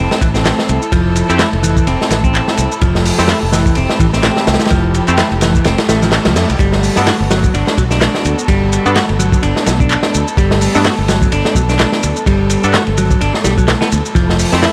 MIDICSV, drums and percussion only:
0, 0, Header, 1, 2, 480
1, 0, Start_track
1, 0, Key_signature, 1, "major"
1, 0, Tempo, 472441
1, 945, Time_signature, 4, 2, 24, 8
1, 14961, End_track
2, 0, Start_track
2, 0, Title_t, "Drums"
2, 114, Note_on_c, 9, 38, 55
2, 216, Note_off_c, 9, 38, 0
2, 217, Note_on_c, 9, 36, 99
2, 219, Note_on_c, 9, 82, 72
2, 226, Note_on_c, 9, 51, 74
2, 319, Note_off_c, 9, 36, 0
2, 321, Note_off_c, 9, 82, 0
2, 327, Note_off_c, 9, 51, 0
2, 353, Note_on_c, 9, 82, 39
2, 355, Note_on_c, 9, 38, 41
2, 455, Note_off_c, 9, 82, 0
2, 457, Note_off_c, 9, 38, 0
2, 459, Note_on_c, 9, 39, 105
2, 459, Note_on_c, 9, 82, 30
2, 462, Note_on_c, 9, 51, 91
2, 463, Note_on_c, 9, 38, 102
2, 560, Note_off_c, 9, 39, 0
2, 560, Note_off_c, 9, 82, 0
2, 564, Note_off_c, 9, 38, 0
2, 564, Note_off_c, 9, 51, 0
2, 599, Note_on_c, 9, 38, 54
2, 700, Note_off_c, 9, 38, 0
2, 700, Note_on_c, 9, 82, 70
2, 703, Note_on_c, 9, 51, 63
2, 801, Note_off_c, 9, 82, 0
2, 805, Note_off_c, 9, 51, 0
2, 835, Note_on_c, 9, 82, 43
2, 936, Note_on_c, 9, 36, 110
2, 937, Note_off_c, 9, 82, 0
2, 938, Note_on_c, 9, 51, 92
2, 938, Note_on_c, 9, 82, 31
2, 1037, Note_off_c, 9, 36, 0
2, 1039, Note_off_c, 9, 82, 0
2, 1040, Note_off_c, 9, 51, 0
2, 1175, Note_on_c, 9, 51, 63
2, 1180, Note_on_c, 9, 82, 72
2, 1276, Note_off_c, 9, 51, 0
2, 1282, Note_off_c, 9, 82, 0
2, 1317, Note_on_c, 9, 82, 41
2, 1321, Note_on_c, 9, 51, 46
2, 1414, Note_on_c, 9, 38, 121
2, 1418, Note_off_c, 9, 51, 0
2, 1418, Note_on_c, 9, 51, 84
2, 1419, Note_off_c, 9, 82, 0
2, 1422, Note_on_c, 9, 39, 102
2, 1422, Note_on_c, 9, 82, 30
2, 1516, Note_off_c, 9, 38, 0
2, 1519, Note_off_c, 9, 51, 0
2, 1523, Note_off_c, 9, 39, 0
2, 1523, Note_off_c, 9, 82, 0
2, 1556, Note_on_c, 9, 51, 44
2, 1657, Note_off_c, 9, 51, 0
2, 1662, Note_on_c, 9, 82, 75
2, 1665, Note_on_c, 9, 51, 69
2, 1764, Note_off_c, 9, 82, 0
2, 1766, Note_off_c, 9, 51, 0
2, 1794, Note_on_c, 9, 36, 95
2, 1798, Note_on_c, 9, 82, 41
2, 1896, Note_off_c, 9, 36, 0
2, 1900, Note_off_c, 9, 82, 0
2, 1900, Note_on_c, 9, 51, 87
2, 1903, Note_on_c, 9, 82, 31
2, 2001, Note_off_c, 9, 51, 0
2, 2005, Note_off_c, 9, 82, 0
2, 2046, Note_on_c, 9, 38, 43
2, 2139, Note_on_c, 9, 51, 71
2, 2145, Note_on_c, 9, 82, 70
2, 2148, Note_off_c, 9, 38, 0
2, 2150, Note_on_c, 9, 38, 54
2, 2241, Note_off_c, 9, 51, 0
2, 2246, Note_off_c, 9, 82, 0
2, 2251, Note_off_c, 9, 38, 0
2, 2276, Note_on_c, 9, 36, 91
2, 2278, Note_on_c, 9, 82, 40
2, 2378, Note_off_c, 9, 36, 0
2, 2380, Note_off_c, 9, 82, 0
2, 2385, Note_on_c, 9, 39, 100
2, 2385, Note_on_c, 9, 82, 31
2, 2387, Note_on_c, 9, 51, 76
2, 2486, Note_off_c, 9, 39, 0
2, 2486, Note_off_c, 9, 82, 0
2, 2488, Note_off_c, 9, 51, 0
2, 2517, Note_on_c, 9, 38, 45
2, 2615, Note_on_c, 9, 51, 68
2, 2619, Note_off_c, 9, 38, 0
2, 2625, Note_on_c, 9, 82, 74
2, 2717, Note_off_c, 9, 51, 0
2, 2726, Note_off_c, 9, 82, 0
2, 2762, Note_on_c, 9, 82, 41
2, 2860, Note_on_c, 9, 51, 92
2, 2862, Note_on_c, 9, 36, 103
2, 2863, Note_off_c, 9, 82, 0
2, 2868, Note_on_c, 9, 82, 32
2, 2962, Note_off_c, 9, 51, 0
2, 2964, Note_off_c, 9, 36, 0
2, 2970, Note_off_c, 9, 82, 0
2, 3000, Note_on_c, 9, 38, 44
2, 3101, Note_off_c, 9, 38, 0
2, 3103, Note_on_c, 9, 46, 88
2, 3108, Note_on_c, 9, 82, 71
2, 3205, Note_off_c, 9, 46, 0
2, 3209, Note_off_c, 9, 82, 0
2, 3236, Note_on_c, 9, 38, 52
2, 3243, Note_on_c, 9, 82, 43
2, 3332, Note_off_c, 9, 38, 0
2, 3332, Note_on_c, 9, 38, 125
2, 3338, Note_on_c, 9, 51, 90
2, 3345, Note_off_c, 9, 82, 0
2, 3349, Note_on_c, 9, 39, 100
2, 3349, Note_on_c, 9, 82, 31
2, 3433, Note_off_c, 9, 38, 0
2, 3439, Note_off_c, 9, 51, 0
2, 3450, Note_off_c, 9, 39, 0
2, 3450, Note_off_c, 9, 82, 0
2, 3581, Note_on_c, 9, 38, 56
2, 3586, Note_on_c, 9, 82, 76
2, 3588, Note_on_c, 9, 51, 75
2, 3683, Note_off_c, 9, 38, 0
2, 3688, Note_off_c, 9, 82, 0
2, 3690, Note_off_c, 9, 51, 0
2, 3718, Note_on_c, 9, 36, 94
2, 3722, Note_on_c, 9, 82, 42
2, 3812, Note_on_c, 9, 51, 83
2, 3820, Note_off_c, 9, 36, 0
2, 3824, Note_off_c, 9, 82, 0
2, 3830, Note_on_c, 9, 82, 31
2, 3913, Note_off_c, 9, 51, 0
2, 3931, Note_off_c, 9, 82, 0
2, 3958, Note_on_c, 9, 38, 50
2, 4059, Note_off_c, 9, 38, 0
2, 4060, Note_on_c, 9, 36, 88
2, 4065, Note_on_c, 9, 51, 75
2, 4066, Note_on_c, 9, 82, 73
2, 4162, Note_off_c, 9, 36, 0
2, 4167, Note_off_c, 9, 51, 0
2, 4168, Note_off_c, 9, 82, 0
2, 4199, Note_on_c, 9, 38, 35
2, 4204, Note_on_c, 9, 82, 43
2, 4298, Note_on_c, 9, 51, 79
2, 4300, Note_off_c, 9, 38, 0
2, 4300, Note_on_c, 9, 38, 118
2, 4306, Note_off_c, 9, 82, 0
2, 4309, Note_on_c, 9, 39, 98
2, 4309, Note_on_c, 9, 82, 30
2, 4399, Note_off_c, 9, 51, 0
2, 4402, Note_off_c, 9, 38, 0
2, 4411, Note_off_c, 9, 39, 0
2, 4411, Note_off_c, 9, 82, 0
2, 4436, Note_on_c, 9, 38, 60
2, 4537, Note_off_c, 9, 38, 0
2, 4544, Note_on_c, 9, 38, 97
2, 4546, Note_on_c, 9, 82, 75
2, 4548, Note_on_c, 9, 51, 71
2, 4610, Note_off_c, 9, 38, 0
2, 4610, Note_on_c, 9, 38, 87
2, 4614, Note_off_c, 9, 51, 0
2, 4614, Note_on_c, 9, 51, 65
2, 4648, Note_off_c, 9, 82, 0
2, 4668, Note_off_c, 9, 38, 0
2, 4668, Note_on_c, 9, 38, 90
2, 4671, Note_off_c, 9, 51, 0
2, 4671, Note_on_c, 9, 51, 72
2, 4684, Note_on_c, 9, 82, 42
2, 4728, Note_off_c, 9, 51, 0
2, 4728, Note_on_c, 9, 51, 64
2, 4738, Note_off_c, 9, 38, 0
2, 4738, Note_on_c, 9, 38, 90
2, 4779, Note_off_c, 9, 51, 0
2, 4779, Note_on_c, 9, 51, 82
2, 4785, Note_on_c, 9, 36, 115
2, 4786, Note_off_c, 9, 82, 0
2, 4788, Note_on_c, 9, 82, 33
2, 4840, Note_off_c, 9, 38, 0
2, 4880, Note_off_c, 9, 51, 0
2, 4887, Note_off_c, 9, 36, 0
2, 4890, Note_off_c, 9, 82, 0
2, 5024, Note_on_c, 9, 51, 64
2, 5025, Note_on_c, 9, 82, 74
2, 5126, Note_off_c, 9, 51, 0
2, 5127, Note_off_c, 9, 82, 0
2, 5151, Note_on_c, 9, 51, 42
2, 5161, Note_on_c, 9, 82, 43
2, 5252, Note_off_c, 9, 51, 0
2, 5258, Note_on_c, 9, 51, 96
2, 5262, Note_on_c, 9, 38, 109
2, 5263, Note_off_c, 9, 82, 0
2, 5267, Note_on_c, 9, 39, 102
2, 5267, Note_on_c, 9, 82, 32
2, 5360, Note_off_c, 9, 51, 0
2, 5363, Note_off_c, 9, 38, 0
2, 5368, Note_off_c, 9, 39, 0
2, 5368, Note_off_c, 9, 82, 0
2, 5403, Note_on_c, 9, 51, 43
2, 5497, Note_off_c, 9, 51, 0
2, 5497, Note_on_c, 9, 51, 86
2, 5507, Note_on_c, 9, 82, 80
2, 5508, Note_on_c, 9, 38, 97
2, 5598, Note_off_c, 9, 51, 0
2, 5608, Note_off_c, 9, 82, 0
2, 5610, Note_off_c, 9, 38, 0
2, 5638, Note_on_c, 9, 36, 87
2, 5641, Note_on_c, 9, 82, 44
2, 5735, Note_on_c, 9, 51, 83
2, 5739, Note_off_c, 9, 36, 0
2, 5743, Note_off_c, 9, 82, 0
2, 5745, Note_on_c, 9, 38, 100
2, 5747, Note_on_c, 9, 82, 32
2, 5836, Note_off_c, 9, 51, 0
2, 5846, Note_off_c, 9, 38, 0
2, 5849, Note_off_c, 9, 82, 0
2, 5875, Note_on_c, 9, 51, 83
2, 5878, Note_on_c, 9, 38, 114
2, 5976, Note_off_c, 9, 51, 0
2, 5980, Note_off_c, 9, 38, 0
2, 5982, Note_on_c, 9, 38, 94
2, 5983, Note_on_c, 9, 51, 77
2, 5985, Note_on_c, 9, 82, 79
2, 6083, Note_off_c, 9, 38, 0
2, 6085, Note_off_c, 9, 51, 0
2, 6087, Note_off_c, 9, 82, 0
2, 6120, Note_on_c, 9, 82, 42
2, 6123, Note_on_c, 9, 38, 44
2, 6215, Note_off_c, 9, 38, 0
2, 6215, Note_on_c, 9, 38, 107
2, 6222, Note_off_c, 9, 82, 0
2, 6224, Note_on_c, 9, 39, 103
2, 6224, Note_on_c, 9, 51, 80
2, 6224, Note_on_c, 9, 82, 31
2, 6317, Note_off_c, 9, 38, 0
2, 6325, Note_off_c, 9, 39, 0
2, 6325, Note_off_c, 9, 51, 0
2, 6325, Note_off_c, 9, 82, 0
2, 6352, Note_on_c, 9, 38, 99
2, 6353, Note_on_c, 9, 51, 76
2, 6454, Note_off_c, 9, 38, 0
2, 6455, Note_off_c, 9, 51, 0
2, 6462, Note_on_c, 9, 51, 78
2, 6463, Note_on_c, 9, 38, 103
2, 6463, Note_on_c, 9, 82, 77
2, 6564, Note_off_c, 9, 51, 0
2, 6565, Note_off_c, 9, 38, 0
2, 6565, Note_off_c, 9, 82, 0
2, 6599, Note_on_c, 9, 82, 43
2, 6600, Note_on_c, 9, 51, 69
2, 6698, Note_on_c, 9, 36, 115
2, 6701, Note_off_c, 9, 82, 0
2, 6702, Note_off_c, 9, 51, 0
2, 6705, Note_on_c, 9, 82, 34
2, 6706, Note_on_c, 9, 51, 84
2, 6800, Note_off_c, 9, 36, 0
2, 6807, Note_off_c, 9, 82, 0
2, 6808, Note_off_c, 9, 51, 0
2, 6833, Note_on_c, 9, 38, 47
2, 6934, Note_off_c, 9, 38, 0
2, 6943, Note_on_c, 9, 82, 77
2, 6950, Note_on_c, 9, 46, 79
2, 7044, Note_off_c, 9, 82, 0
2, 7052, Note_off_c, 9, 46, 0
2, 7071, Note_on_c, 9, 38, 51
2, 7079, Note_on_c, 9, 82, 46
2, 7173, Note_off_c, 9, 38, 0
2, 7180, Note_off_c, 9, 82, 0
2, 7180, Note_on_c, 9, 51, 93
2, 7181, Note_on_c, 9, 39, 106
2, 7181, Note_on_c, 9, 82, 34
2, 7184, Note_on_c, 9, 38, 119
2, 7281, Note_off_c, 9, 51, 0
2, 7283, Note_off_c, 9, 39, 0
2, 7283, Note_off_c, 9, 82, 0
2, 7285, Note_off_c, 9, 38, 0
2, 7422, Note_on_c, 9, 38, 62
2, 7423, Note_on_c, 9, 82, 79
2, 7428, Note_on_c, 9, 51, 73
2, 7524, Note_off_c, 9, 38, 0
2, 7524, Note_off_c, 9, 82, 0
2, 7529, Note_off_c, 9, 51, 0
2, 7558, Note_on_c, 9, 82, 45
2, 7560, Note_on_c, 9, 36, 86
2, 7660, Note_off_c, 9, 82, 0
2, 7662, Note_off_c, 9, 36, 0
2, 7664, Note_on_c, 9, 82, 33
2, 7666, Note_on_c, 9, 51, 87
2, 7765, Note_off_c, 9, 82, 0
2, 7768, Note_off_c, 9, 51, 0
2, 7796, Note_on_c, 9, 38, 53
2, 7897, Note_off_c, 9, 38, 0
2, 7901, Note_on_c, 9, 36, 94
2, 7903, Note_on_c, 9, 51, 67
2, 7904, Note_on_c, 9, 82, 80
2, 8002, Note_off_c, 9, 36, 0
2, 8005, Note_off_c, 9, 51, 0
2, 8005, Note_off_c, 9, 82, 0
2, 8032, Note_on_c, 9, 38, 39
2, 8038, Note_on_c, 9, 82, 45
2, 8134, Note_off_c, 9, 38, 0
2, 8139, Note_off_c, 9, 82, 0
2, 8142, Note_on_c, 9, 38, 126
2, 8142, Note_on_c, 9, 39, 106
2, 8142, Note_on_c, 9, 82, 33
2, 8147, Note_on_c, 9, 51, 93
2, 8243, Note_off_c, 9, 39, 0
2, 8243, Note_off_c, 9, 82, 0
2, 8244, Note_off_c, 9, 38, 0
2, 8249, Note_off_c, 9, 51, 0
2, 8276, Note_on_c, 9, 38, 52
2, 8378, Note_off_c, 9, 38, 0
2, 8383, Note_on_c, 9, 82, 81
2, 8387, Note_on_c, 9, 51, 73
2, 8485, Note_off_c, 9, 82, 0
2, 8488, Note_off_c, 9, 51, 0
2, 8521, Note_on_c, 9, 82, 45
2, 8618, Note_on_c, 9, 36, 118
2, 8618, Note_on_c, 9, 51, 97
2, 8622, Note_off_c, 9, 82, 0
2, 8625, Note_on_c, 9, 82, 34
2, 8720, Note_off_c, 9, 36, 0
2, 8720, Note_off_c, 9, 51, 0
2, 8726, Note_off_c, 9, 82, 0
2, 8864, Note_on_c, 9, 82, 77
2, 8868, Note_on_c, 9, 51, 68
2, 8966, Note_off_c, 9, 82, 0
2, 8970, Note_off_c, 9, 51, 0
2, 9000, Note_on_c, 9, 82, 45
2, 9001, Note_on_c, 9, 51, 46
2, 9099, Note_off_c, 9, 51, 0
2, 9099, Note_on_c, 9, 51, 89
2, 9101, Note_off_c, 9, 82, 0
2, 9101, Note_on_c, 9, 38, 107
2, 9105, Note_on_c, 9, 39, 109
2, 9105, Note_on_c, 9, 82, 33
2, 9201, Note_off_c, 9, 51, 0
2, 9203, Note_off_c, 9, 38, 0
2, 9207, Note_off_c, 9, 39, 0
2, 9207, Note_off_c, 9, 82, 0
2, 9236, Note_on_c, 9, 51, 45
2, 9337, Note_off_c, 9, 51, 0
2, 9343, Note_on_c, 9, 51, 67
2, 9346, Note_on_c, 9, 82, 78
2, 9444, Note_off_c, 9, 51, 0
2, 9447, Note_off_c, 9, 82, 0
2, 9473, Note_on_c, 9, 36, 98
2, 9481, Note_on_c, 9, 82, 46
2, 9575, Note_off_c, 9, 36, 0
2, 9579, Note_on_c, 9, 51, 86
2, 9582, Note_off_c, 9, 82, 0
2, 9587, Note_on_c, 9, 82, 33
2, 9680, Note_off_c, 9, 51, 0
2, 9689, Note_off_c, 9, 82, 0
2, 9717, Note_on_c, 9, 38, 44
2, 9818, Note_off_c, 9, 38, 0
2, 9818, Note_on_c, 9, 51, 65
2, 9825, Note_on_c, 9, 82, 78
2, 9828, Note_on_c, 9, 38, 49
2, 9920, Note_off_c, 9, 51, 0
2, 9927, Note_off_c, 9, 82, 0
2, 9930, Note_off_c, 9, 38, 0
2, 9959, Note_on_c, 9, 36, 101
2, 9962, Note_on_c, 9, 82, 44
2, 10050, Note_on_c, 9, 51, 77
2, 10061, Note_off_c, 9, 36, 0
2, 10064, Note_off_c, 9, 82, 0
2, 10067, Note_on_c, 9, 39, 110
2, 10067, Note_on_c, 9, 82, 33
2, 10152, Note_off_c, 9, 51, 0
2, 10169, Note_off_c, 9, 39, 0
2, 10169, Note_off_c, 9, 82, 0
2, 10188, Note_on_c, 9, 38, 52
2, 10289, Note_off_c, 9, 38, 0
2, 10307, Note_on_c, 9, 82, 79
2, 10308, Note_on_c, 9, 51, 65
2, 10408, Note_off_c, 9, 82, 0
2, 10409, Note_off_c, 9, 51, 0
2, 10442, Note_on_c, 9, 82, 46
2, 10538, Note_on_c, 9, 36, 104
2, 10543, Note_off_c, 9, 82, 0
2, 10546, Note_on_c, 9, 51, 86
2, 10548, Note_on_c, 9, 82, 33
2, 10640, Note_off_c, 9, 36, 0
2, 10648, Note_off_c, 9, 51, 0
2, 10649, Note_off_c, 9, 82, 0
2, 10678, Note_on_c, 9, 38, 54
2, 10779, Note_off_c, 9, 38, 0
2, 10779, Note_on_c, 9, 46, 81
2, 10786, Note_on_c, 9, 82, 74
2, 10881, Note_off_c, 9, 46, 0
2, 10887, Note_off_c, 9, 82, 0
2, 10920, Note_on_c, 9, 82, 43
2, 10923, Note_on_c, 9, 38, 56
2, 11017, Note_on_c, 9, 51, 94
2, 11021, Note_off_c, 9, 82, 0
2, 11023, Note_off_c, 9, 38, 0
2, 11023, Note_on_c, 9, 38, 109
2, 11025, Note_on_c, 9, 39, 110
2, 11025, Note_on_c, 9, 82, 32
2, 11119, Note_off_c, 9, 51, 0
2, 11125, Note_off_c, 9, 38, 0
2, 11127, Note_off_c, 9, 39, 0
2, 11127, Note_off_c, 9, 82, 0
2, 11259, Note_on_c, 9, 51, 67
2, 11266, Note_on_c, 9, 38, 58
2, 11266, Note_on_c, 9, 82, 79
2, 11361, Note_off_c, 9, 51, 0
2, 11368, Note_off_c, 9, 38, 0
2, 11368, Note_off_c, 9, 82, 0
2, 11397, Note_on_c, 9, 36, 101
2, 11402, Note_on_c, 9, 82, 45
2, 11499, Note_off_c, 9, 36, 0
2, 11501, Note_on_c, 9, 51, 97
2, 11503, Note_off_c, 9, 82, 0
2, 11505, Note_on_c, 9, 82, 33
2, 11602, Note_off_c, 9, 51, 0
2, 11607, Note_off_c, 9, 82, 0
2, 11635, Note_on_c, 9, 38, 54
2, 11736, Note_on_c, 9, 36, 100
2, 11737, Note_off_c, 9, 38, 0
2, 11744, Note_on_c, 9, 82, 80
2, 11751, Note_on_c, 9, 51, 63
2, 11837, Note_off_c, 9, 36, 0
2, 11845, Note_off_c, 9, 82, 0
2, 11853, Note_off_c, 9, 51, 0
2, 11880, Note_on_c, 9, 82, 45
2, 11883, Note_on_c, 9, 38, 34
2, 11979, Note_on_c, 9, 51, 84
2, 11981, Note_off_c, 9, 82, 0
2, 11984, Note_off_c, 9, 38, 0
2, 11984, Note_on_c, 9, 39, 110
2, 11984, Note_on_c, 9, 82, 32
2, 11987, Note_on_c, 9, 38, 119
2, 12080, Note_off_c, 9, 51, 0
2, 12086, Note_off_c, 9, 39, 0
2, 12086, Note_off_c, 9, 82, 0
2, 12088, Note_off_c, 9, 38, 0
2, 12115, Note_on_c, 9, 38, 55
2, 12216, Note_off_c, 9, 38, 0
2, 12223, Note_on_c, 9, 82, 77
2, 12224, Note_on_c, 9, 51, 65
2, 12324, Note_off_c, 9, 82, 0
2, 12325, Note_off_c, 9, 51, 0
2, 12358, Note_on_c, 9, 82, 44
2, 12460, Note_off_c, 9, 82, 0
2, 12460, Note_on_c, 9, 36, 105
2, 12462, Note_on_c, 9, 82, 32
2, 12467, Note_on_c, 9, 51, 96
2, 12562, Note_off_c, 9, 36, 0
2, 12564, Note_off_c, 9, 82, 0
2, 12569, Note_off_c, 9, 51, 0
2, 12696, Note_on_c, 9, 51, 67
2, 12702, Note_on_c, 9, 82, 72
2, 12798, Note_off_c, 9, 51, 0
2, 12804, Note_off_c, 9, 82, 0
2, 12838, Note_on_c, 9, 82, 42
2, 12843, Note_on_c, 9, 51, 42
2, 12939, Note_off_c, 9, 82, 0
2, 12942, Note_on_c, 9, 38, 126
2, 12942, Note_on_c, 9, 39, 108
2, 12942, Note_on_c, 9, 82, 31
2, 12944, Note_off_c, 9, 51, 0
2, 12944, Note_on_c, 9, 51, 82
2, 13044, Note_off_c, 9, 38, 0
2, 13044, Note_off_c, 9, 39, 0
2, 13044, Note_off_c, 9, 82, 0
2, 13045, Note_off_c, 9, 51, 0
2, 13073, Note_on_c, 9, 51, 48
2, 13174, Note_off_c, 9, 51, 0
2, 13182, Note_on_c, 9, 82, 76
2, 13183, Note_on_c, 9, 51, 71
2, 13284, Note_off_c, 9, 82, 0
2, 13285, Note_off_c, 9, 51, 0
2, 13317, Note_on_c, 9, 36, 92
2, 13318, Note_on_c, 9, 82, 43
2, 13418, Note_off_c, 9, 36, 0
2, 13419, Note_off_c, 9, 82, 0
2, 13424, Note_on_c, 9, 51, 82
2, 13424, Note_on_c, 9, 82, 31
2, 13526, Note_off_c, 9, 51, 0
2, 13526, Note_off_c, 9, 82, 0
2, 13557, Note_on_c, 9, 38, 40
2, 13658, Note_off_c, 9, 38, 0
2, 13658, Note_on_c, 9, 38, 54
2, 13659, Note_on_c, 9, 51, 61
2, 13663, Note_on_c, 9, 82, 74
2, 13760, Note_off_c, 9, 38, 0
2, 13760, Note_off_c, 9, 51, 0
2, 13764, Note_off_c, 9, 82, 0
2, 13794, Note_on_c, 9, 36, 101
2, 13801, Note_on_c, 9, 82, 41
2, 13896, Note_off_c, 9, 36, 0
2, 13898, Note_on_c, 9, 38, 111
2, 13900, Note_on_c, 9, 51, 82
2, 13902, Note_off_c, 9, 82, 0
2, 13905, Note_on_c, 9, 39, 106
2, 13905, Note_on_c, 9, 82, 32
2, 14000, Note_off_c, 9, 38, 0
2, 14001, Note_off_c, 9, 51, 0
2, 14006, Note_off_c, 9, 39, 0
2, 14006, Note_off_c, 9, 82, 0
2, 14039, Note_on_c, 9, 38, 101
2, 14044, Note_on_c, 9, 51, 86
2, 14140, Note_off_c, 9, 38, 0
2, 14143, Note_on_c, 9, 82, 74
2, 14144, Note_off_c, 9, 51, 0
2, 14144, Note_on_c, 9, 51, 67
2, 14244, Note_off_c, 9, 82, 0
2, 14245, Note_off_c, 9, 51, 0
2, 14280, Note_on_c, 9, 82, 43
2, 14378, Note_on_c, 9, 36, 109
2, 14381, Note_off_c, 9, 82, 0
2, 14384, Note_on_c, 9, 51, 85
2, 14385, Note_on_c, 9, 82, 31
2, 14479, Note_off_c, 9, 36, 0
2, 14486, Note_off_c, 9, 51, 0
2, 14486, Note_off_c, 9, 82, 0
2, 14524, Note_on_c, 9, 38, 45
2, 14622, Note_on_c, 9, 82, 71
2, 14623, Note_on_c, 9, 46, 88
2, 14626, Note_off_c, 9, 38, 0
2, 14724, Note_off_c, 9, 82, 0
2, 14725, Note_off_c, 9, 46, 0
2, 14757, Note_on_c, 9, 38, 47
2, 14757, Note_on_c, 9, 82, 41
2, 14858, Note_off_c, 9, 38, 0
2, 14859, Note_off_c, 9, 82, 0
2, 14861, Note_on_c, 9, 38, 114
2, 14863, Note_on_c, 9, 39, 106
2, 14863, Note_on_c, 9, 82, 30
2, 14869, Note_on_c, 9, 51, 83
2, 14961, Note_off_c, 9, 38, 0
2, 14961, Note_off_c, 9, 39, 0
2, 14961, Note_off_c, 9, 51, 0
2, 14961, Note_off_c, 9, 82, 0
2, 14961, End_track
0, 0, End_of_file